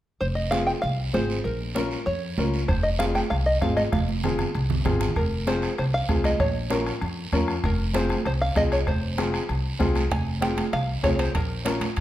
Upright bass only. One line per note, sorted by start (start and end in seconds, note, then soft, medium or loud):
0.21 0.71 F1 medium
0.83 1.08 C2 medium
1.14 1.39 G#1 medium
1.45 1.95 A#1 medium
2.07 2.32 F2 medium
2.38 2.63 C#2 medium
2.69 3.19 F1 medium
3.31 3.56 C2 medium
3.62 3.87 G#1 medium
3.93 4.42 F1 medium
4.55 4.80 C2 medium
4.86 5.10 G#1 medium
5.16 5.66 F1 medium
5.79 6.03 C2 medium
6.09 6.34 C2 medium
6.40 6.90 A#1 medium
7.02 7.27 F2 medium
7.33 7.58 F2 medium
7.64 8.13 F1 medium
8.26 8.51 C2 medium
8.56 8.81 C2 medium
8.87 9.37 F1 medium
9.49 9.74 C2 medium
9.80 10.05 C2 medium
10.11 10.61 F1 medium
10.73 10.98 C2 loud
11.04 11.29 C2 medium
11.35 11.84 A#1 medium
11.97 12.01 F2 loud